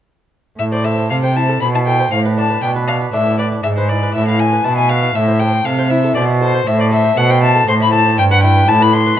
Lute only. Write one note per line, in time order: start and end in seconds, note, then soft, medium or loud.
0.59 1.06 A2 soft
0.72 0.93 C5 soft
0.85 1.05 A4 soft
0.98 1.18 C5 soft
1.11 1.58 C3 medium
1.11 1.31 A4 soft
1.23 1.44 C5 soft
1.36 1.56 E4 soft
1.49 1.69 A4 soft
1.62 2.08 B2 soft
1.62 1.82 C5 soft
1.74 1.94 E4 soft
1.87 2.07 A4 soft
1.99 2.12 C5 soft
2.12 2.59 A2 soft
2.25 2.45 B4 soft
2.38 2.58 D4 soft
2.50 2.70 B4 soft
2.63 3.10 B2 medium
2.63 2.83 D4 soft
2.76 2.96 B4 soft
2.88 3.08 D4 soft
3.01 3.21 B4 soft
3.13 3.61 A2 soft
3.13 3.34 D4 soft
3.26 3.47 B3 soft
3.39 3.59 B4 soft
3.52 3.64 D4 soft
3.64 4.11 G#2 medium
3.77 3.98 B4 soft
3.90 4.10 E4 soft
4.03 4.23 B4 soft
4.15 4.62 A2 medium
4.15 4.35 E4 soft
4.28 4.48 B4 soft
4.40 4.61 E4 soft
4.53 4.73 B4 soft
4.65 5.12 B2 soft
4.65 4.85 E4 soft
4.78 4.98 B3 soft
4.90 5.11 B4 soft
5.02 5.15 E4 soft
5.15 5.62 A2 medium
5.28 5.48 C5 soft
5.41 5.61 A4 soft
5.53 5.74 C5 soft
5.65 6.12 C3 medium
5.65 5.86 A4 soft
5.78 5.99 C5 soft
5.91 6.11 E4 soft
6.04 6.24 A4 medium
6.16 6.63 B2 medium
6.16 6.37 C5 medium
6.29 6.49 E4 soft
6.41 6.62 A4 soft
6.54 6.67 C5 medium
6.67 7.13 A2 medium
6.79 6.99 C5 medium
6.91 7.12 A4 medium
7.04 7.25 C5 medium
7.17 7.64 B2 medium
7.17 7.37 A4 medium
7.30 7.50 C5 medium
7.43 7.63 E4 soft
7.55 7.76 A4 medium
7.68 8.14 A2 medium
7.68 7.88 C5 medium
7.80 8.01 E4 medium
7.93 8.13 A4 medium
8.06 8.18 C5 medium
8.18 8.65 G2 medium
8.31 8.51 B4 medium
8.43 8.64 E4 medium
8.56 8.76 B4 medium
8.68 9.14 A2 medium
8.68 8.88 E4 medium
8.80 9.01 B4 medium
8.93 9.14 E4 medium
9.06 9.20 B4 medium